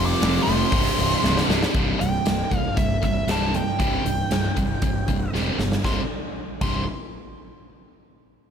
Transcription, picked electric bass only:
0.00 0.12 F1 medium
0.22 0.38 F1 loud
0.47 0.63 F1 medium
0.73 0.88 C1 medium
0.99 1.14 C1 medium
1.24 1.39 C1 medium
1.49 1.65 C1 medium
1.75 1.91 C1 medium
2.01 2.17 C1 medium
2.27 2.43 C1 medium
2.51 2.67 C1 medium
2.77 2.93 C1 medium
3.03 3.19 C1 medium
3.27 3.60 C1 medium
3.80 3.96 C1 medium
4.05 4.21 C1 medium
4.31 4.47 C1 medium
4.57 4.73 C1 medium
4.82 4.98 C1 medium
5.08 5.24 C1 medium
5.33 5.49 E1 medium
5.59 5.75 G1 medium
5.85 5.99 C1 medium
6.61 6.85 C1 medium

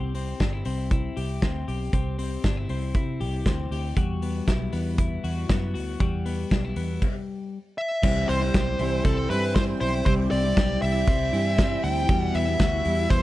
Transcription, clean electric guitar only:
0.00 1.35 G3 medium
0.00 0.14 C4 medium
0.00 0.40 E4 medium
0.00 1.16 G4 medium
0.15 0.64 C4 medium
0.41 0.53 D4 medium
0.53 0.90 E4 soft
0.66 1.41 C4 medium
0.91 2.44 E4 medium
1.17 1.68 G4 medium
1.42 1.92 C4 medium
1.68 1.93 G4 medium
1.93 2.17 C4 medium
1.93 3.20 G4 medium
2.19 2.69 C4 medium
2.44 2.57 D4 medium
2.57 2.94 E4 soft
2.70 3.45 C4 medium
2.95 4.47 E4 medium
3.21 3.71 G4 medium
3.46 4.02 C4 medium
3.72 3.97 G4 medium
3.97 6.00 G3 medium
3.97 5.23 F#4 medium
4.23 4.72 B3 medium
4.48 4.98 E4 medium
4.73 5.48 B3 medium
4.99 6.51 E4 medium
5.24 5.73 F#4 medium
5.49 6.25 B3 medium
5.74 6.00 F#4 medium
6.00 7.57 G3 medium
6.00 7.07 F#4 medium
6.26 6.75 B3 medium
6.51 6.65 D4 medium
6.65 7.07 E4 soft
6.77 7.07 B3 medium
8.04 10.06 G3 medium
8.29 9.04 C4 medium
8.54 10.56 G4 medium
8.79 9.29 E4 medium
9.05 9.54 C4 medium
9.30 9.80 E4 medium
9.55 10.30 C4 medium
9.81 10.82 E4 medium
10.06 12.09 G3 medium
10.32 11.07 C4 medium
10.57 12.59 G4 medium
10.82 11.33 E4 medium
11.08 11.57 C4 medium
11.33 11.83 E4 medium
11.58 12.14 C4 medium
11.83 12.62 E4 medium
12.09 13.22 G3 medium
12.34 13.09 B3 medium
12.59 13.22 F#4 medium
12.85 13.22 E4 medium
13.10 13.22 B3 medium

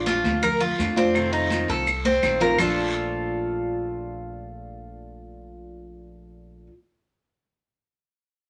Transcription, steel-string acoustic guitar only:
0.06 0.41 F3 medium
0.06 0.42 A3 medium
0.06 0.43 D4 medium
0.06 0.43 F4 medium
0.43 muted steel-string acoustic guitar stroke medium
0.78 0.96 F3 medium
0.78 0.96 A3 soft
0.78 0.96 D4 medium
0.78 0.95 F4 medium
0.96 1.14 A3 medium
0.96 1.14 D4 medium
0.96 1.14 F4 medium
1.14 1.50 C3 medium
1.14 1.49 D#3 medium
1.14 1.50 A3 medium
1.14 1.51 C4 medium
1.14 1.51 F4 medium
1.50 1.86 D#3 medium
1.50 1.87 A3 medium
1.50 1.87 C4 medium
1.50 1.87 F4 medium
1.87 muted steel-string acoustic guitar stroke medium
2.23 2.40 D#3 soft
2.23 2.41 A3 soft
2.23 2.40 C4 medium
2.23 2.39 F4 medium
2.41 2.58 D#3 medium
2.41 2.59 A3 medium
2.41 2.59 C4 medium
2.41 2.58 F4 medium
2.58 6.69 A#2 medium
2.58 6.70 F3 medium
2.58 6.71 A3 medium
2.58 6.72 D4 medium
2.58 6.73 F4 medium

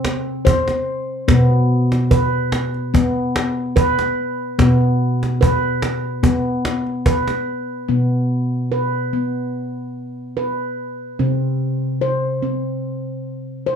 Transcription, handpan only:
0.00 1.24 C3 medium
0.00 0.45 C4 medium
0.45 1.28 C5 medium
1.28 4.55 B2 medium
1.28 2.11 B3 medium
2.11 2.94 B4 medium
2.94 3.76 B3 medium
3.76 4.59 B4 medium
4.59 7.85 B2 medium
4.59 5.41 B3 medium
5.41 6.23 B4 medium
6.23 7.06 B3 medium
7.06 7.89 B4 medium
7.88 11.15 B2 medium
7.88 8.71 B3 medium
8.72 9.13 B4 medium
9.13 9.95 B3 medium
10.37 11.19 B4 medium
11.19 13.76 C3 medium
11.19 12.02 C4 medium
12.01 12.43 C5 medium
12.43 13.25 C4 medium
13.67 13.76 C5 medium

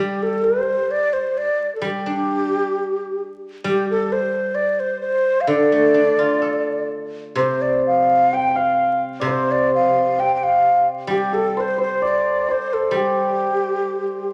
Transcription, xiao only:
0.00 0.24 G4 medium
0.23 0.46 A4 medium
0.44 0.93 C5 medium
0.91 1.15 D5 medium
1.13 1.39 C5 medium
1.38 1.75 D5 medium
1.75 1.86 A4 soft
1.84 3.22 G4 medium
3.69 3.89 G4 medium
3.91 4.14 A4 medium
4.12 4.56 C5 medium
4.55 4.81 D5 medium
4.80 5.00 C5 medium
5.01 5.42 C5 medium
5.41 5.50 F5 medium
5.48 6.89 D5 medium
7.37 7.63 C5 medium
7.62 7.85 D5 medium
7.87 8.36 F5 medium
8.34 8.51 G5 medium
8.51 8.58 G5 medium
8.57 9.03 F5 medium
9.27 9.53 C5 medium
9.51 9.73 D5 medium
9.75 10.22 F5 medium
10.20 10.34 G5 medium
10.35 10.45 G5 medium
10.43 10.88 F5 medium
11.11 11.36 G4 medium
11.34 11.62 A4 medium
11.61 11.80 C5 medium
11.82 12.01 C5 medium
12.05 12.53 D5 medium
12.51 12.75 C5 medium
12.73 12.99 A4 medium
12.97 14.33 G4 medium

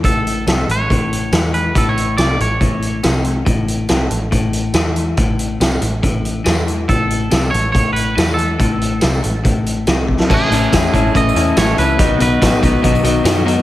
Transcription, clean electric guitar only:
0.05 0.71 A4 medium
0.71 1.52 C#5 loud
1.54 1.76 B4 medium
1.78 1.88 A4 medium
1.89 2.17 C#5 medium
2.18 2.40 D5 medium
2.41 3.22 C#5 loud
6.89 7.50 A4 medium
7.51 7.71 C#5 loud
7.72 7.92 C#5 loud
7.93 8.34 B4 medium
8.34 9.81 A4 medium
10.34 11.17 G#4 medium
11.17 11.58 D#5 loud
11.58 11.78 C#5 loud
11.79 12.21 B4 loud
12.22 13.02 B4 medium

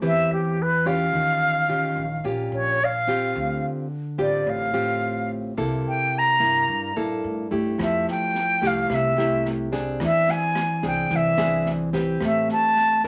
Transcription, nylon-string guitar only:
0.02 1.11 E3 medium
0.02 0.58 C4 medium
0.02 0.58 G4 medium
0.02 0.58 B4 medium
0.86 1.65 C#4 medium
0.86 1.65 F4 medium
0.86 1.65 G4 medium
1.13 2.22 D#3 medium
1.69 2.05 C#4 medium
1.69 2.05 F4 medium
1.69 2.05 G4 medium
2.24 3.32 A#2 medium
2.24 2.79 C#4 soft
2.24 2.80 F4 medium
2.24 2.80 G4 medium
3.07 3.86 C4 medium
3.07 3.87 F4 medium
3.07 3.87 G4 medium
3.34 4.43 D3 medium
4.18 4.70 C4 medium
4.18 4.70 F4 medium
4.18 4.70 G4 medium
4.46 5.54 A2 medium
4.74 5.53 C4 medium
4.74 5.53 F4 medium
4.74 5.53 G4 medium
5.58 6.66 C3 medium
5.58 6.36 A#3 medium
5.58 6.36 E4 medium
5.58 6.36 A4 medium
6.40 6.91 A#3 medium
6.40 6.91 E4 medium
6.68 7.76 G2 medium
6.96 7.47 A#3 medium
6.96 7.47 E4 medium
6.96 7.47 A4 medium
7.51 8.57 A3 medium
7.51 8.58 E4 medium
7.51 8.58 G4 medium
7.78 8.87 F3 soft
8.62 9.13 A3 medium
8.62 9.13 E4 medium
8.62 9.13 G4 medium
8.90 9.98 C3 medium
9.18 9.68 A3 medium
9.18 9.69 E4 medium
9.18 9.69 G4 medium
9.72 10.79 C4 medium
9.72 10.79 D4 medium
9.72 10.79 G#4 medium
10.00 11.08 E3 soft
10.83 11.34 C4 medium
10.83 11.34 D4 medium
10.83 11.34 G#4 medium
11.11 12.19 E3 medium
11.37 11.89 C4 medium
11.37 11.89 D4 medium
11.37 11.89 G#4 medium
11.93 13.00 C4 medium
11.93 13.00 G4 medium
11.93 13.00 B4 medium
12.22 13.08 A3 medium
13.04 13.08 D4 medium
13.04 13.08 E4 medium
13.04 13.08 A#4 medium

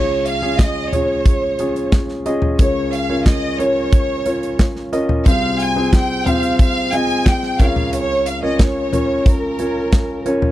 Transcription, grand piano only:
0.00 2.55 C#2 medium
0.00 2.55 C#3 medium
0.00 0.37 C#4 medium
0.00 0.37 F4 medium
0.00 0.37 G#4 medium
0.00 0.37 C#5 medium
0.42 0.87 C#4 medium
0.42 0.87 F4 medium
0.42 0.87 G#4 medium
0.42 0.87 C#5 medium
0.93 1.53 C#4 medium
0.93 1.53 F4 medium
0.93 1.53 G#4 medium
0.93 1.53 C#5 medium
1.59 2.19 C#4 medium
1.59 2.19 F4 medium
1.59 2.19 G#4 medium
1.59 2.19 C#5 medium
2.26 2.56 C#4 medium
2.26 2.56 F4 medium
2.26 2.56 G#4 medium
2.26 2.56 D#5 medium
2.59 5.22 C#2 medium
2.59 5.22 C#3 medium
2.59 3.04 C#4 medium
2.59 3.04 F4 medium
2.59 3.04 A#4 medium
2.59 3.04 C#5 medium
3.09 3.54 C#4 medium
3.09 3.54 F4 medium
3.09 3.54 A#4 medium
3.09 3.54 C#5 medium
3.59 4.19 C#4 medium
3.59 4.19 F4 medium
3.59 4.19 A#4 medium
3.59 4.19 C#5 medium
4.26 4.86 C#4 medium
4.26 4.86 F4 medium
4.26 4.86 A#4 medium
4.26 4.86 C#5 medium
4.93 5.23 C#4 medium
4.93 5.23 F4 medium
4.93 5.23 A#4 medium
4.93 5.23 D#5 medium
5.26 7.56 C2 medium
5.26 7.56 C3 medium
5.26 5.71 C4 medium
5.26 5.71 F4 medium
5.26 5.71 G#4 medium
5.26 5.71 C5 medium
5.76 6.21 C4 medium
5.76 6.21 F4 medium
5.76 6.21 G#4 medium
5.76 6.21 C5 medium
6.26 6.86 C4 medium
6.26 6.86 F4 medium
6.26 6.86 G#4 medium
6.26 6.86 C5 medium
6.93 7.53 C4 medium
6.93 7.53 F4 medium
6.93 7.53 G#4 medium
6.93 7.53 D#5 medium
7.59 10.22 C#2 medium
7.59 10.22 C#3 medium
7.59 8.34 C#4 medium
7.59 8.34 F4 medium
7.59 8.34 A#4 medium
7.59 8.34 C#5 medium
8.43 8.87 C#4 medium
8.43 8.87 F4 medium
8.43 8.88 A#4 medium
8.43 8.88 C#5 medium
8.92 9.52 C#4 medium
8.92 9.52 F4 medium
8.92 9.52 A#4 medium
8.92 9.52 C#5 medium
9.59 10.19 C#4 medium
9.59 10.19 F4 medium
9.59 10.19 A#4 medium
9.59 10.19 C#5 medium
10.26 10.52 C#4 medium
10.26 10.52 F4 medium
10.26 10.52 A#4 medium
10.26 10.52 C#5 medium

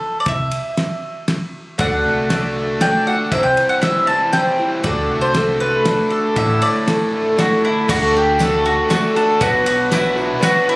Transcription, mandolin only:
0.00 0.17 A4 medium
0.20 0.27 D5 medium
0.28 1.25 E5 loud
1.80 2.81 F#5 medium
2.82 3.07 G5 loud
3.07 3.31 F#5 loud
3.32 3.43 E5 loud
3.43 3.69 G5 medium
3.69 3.81 F#5 medium
3.82 4.07 E5 loud
4.07 4.32 A5 loud
4.33 4.69 G5 loud
4.84 5.20 D5 loud
5.21 5.60 C5 medium
5.60 6.10 B4 loud
6.10 6.35 A4 medium
6.37 6.63 E5 medium
6.62 7.60 D5 medium
7.39 7.64 F#4 medium
7.65 7.88 E4 medium
7.90 8.16 F#4 medium
8.17 8.42 G4 medium
8.41 8.67 A4 medium
8.66 8.89 F#4 medium
8.90 9.14 F#4 loud
9.16 9.40 A4 loud
9.42 9.65 F#4 loud
9.67 9.92 F#4 medium
9.93 10.43 E4 medium
10.43 10.69 F#4 loud
10.69 10.76 E4 medium

